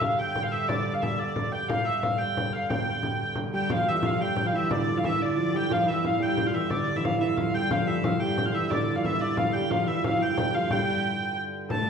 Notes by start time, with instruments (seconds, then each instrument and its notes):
Already playing: harmonium G2 D3
0.01 hurdy-gurdy F5, frame drum
0.18 hurdy-gurdy G5, frame drum
0.35 frame drum
0.43 hurdy-gurdy F5
0.51 hurdy-gurdy E5
0.68 hurdy-gurdy D5, frame drum
0.93 hurdy-gurdy F5
1.02 hurdy-gurdy E5, frame drum
1.19 hurdy-gurdy D5, frame drum
1.36 frame drum
1.52 hurdy-gurdy G5
1.68 hurdy-gurdy F5, frame drum
1.85 hurdy-gurdy E5
2.02 hurdy-gurdy F5, frame drum
2.18 hurdy-gurdy G5, frame drum
2.37 frame drum
2.53 hurdy-gurdy F5
2.69 hurdy-gurdy G5, frame drum
2.87 frame drum
3.03 frame drum
3.20 frame drum
3.35 frame drum
3.53 viola da gamba G3, harp G4, hurdy-gurdy G5, frame drum
3.70 harmonium G2 D3, viola da gamba F3, harp F4, hurdy-gurdy F5, frame drum
3.81 harp F4
3.87 viola da gamba E3, hurdy-gurdy E5
3.92 harp F4
4.03 viola da gamba F3, harp F4, hurdy-gurdy F5, frame drum
4.20 viola da gamba G3, harp G4, hurdy-gurdy G5, frame drum
4.36 frame drum
4.44 viola da gamba F3, harp F4, hurdy-gurdy F5
4.52 viola da gamba E3, harp E4, hurdy-gurdy E5
4.70 viola da gamba D3, harp D4, hurdy-gurdy D5, frame drum
4.94 viola da gamba F3, harp F4, hurdy-gurdy F5
5.03 viola da gamba E3, harp E4, hurdy-gurdy E5, frame drum
5.19 viola da gamba D3, harp D4, hurdy-gurdy D5, frame drum
5.36 viola da gamba F3, harp F4
5.53 viola da gamba G3, harp G4, hurdy-gurdy G5
5.70 viola da gamba F3, harp F4, hurdy-gurdy F5, frame drum
5.86 viola da gamba E3, harp E4, hurdy-gurdy E5
6.05 viola da gamba F3, hurdy-gurdy F5, frame drum
6.20 viola da gamba G3, harp G4, hurdy-gurdy G5, frame drum
6.37 frame drum
6.46 harp F4, hurdy-gurdy F5
6.54 viola da gamba E3, hurdy-gurdy E5
6.70 viola da gamba D3, harp D4, hurdy-gurdy D5, frame drum
6.88 frame drum
6.96 viola da gamba E3 F3, harp E4, hurdy-gurdy E5
7.00 viola da gamba E3
7.04 viola da gamba F3, hurdy-gurdy F5, frame drum
7.20 viola da gamba E3, harp E4, hurdy-gurdy E5
7.37 viola da gamba F3, harp F4, hurdy-gurdy F5, frame drum
7.54 viola da gamba G3, harp G4, hurdy-gurdy G5
7.71 harmonium G2 D3, viola da gamba F3, harp F4, hurdy-gurdy F5, frame drum
7.87 harp E4, hurdy-gurdy E5
8.04 viola da gamba F3, harp F4, hurdy-gurdy F5, frame drum
8.20 viola da gamba G3, harp G4, hurdy-gurdy G5, frame drum
8.38 frame drum
8.45 viola da gamba F3, harp F4, hurdy-gurdy F5
8.54 viola da gamba E3, harp E4, hurdy-gurdy E5
8.70 viola da gamba D3, harp D4, hurdy-gurdy D5, frame drum
8.95 viola da gamba F3, harp F4, hurdy-gurdy F5
9.04 viola da gamba E3, harp E4, hurdy-gurdy E5, frame drum
9.20 viola da gamba D3, harp D4, hurdy-gurdy D5, frame drum
9.37 viola da gamba F3, harp F4, hurdy-gurdy F5, frame drum
9.53 viola da gamba G3, harp G4, hurdy-gurdy G5
9.70 viola da gamba F3, harp F4, hurdy-gurdy F5, frame drum
9.87 viola da gamba E3, harp E4, hurdy-gurdy E5
10.02 viola da gamba F3, harp F4, hurdy-gurdy F5, frame drum
10.19 viola da gamba G3, harp G4, hurdy-gurdy G5, frame drum
10.36 harp G4, frame drum
10.53 viola da gamba F3, harp F4, hurdy-gurdy F5
10.69 viola da gamba G3, harp G4, hurdy-gurdy G5, frame drum
10.87 frame drum
11.69 harmonium G2 D3, viola da gamba A3, harp A4, hurdy-gurdy A5, frame drum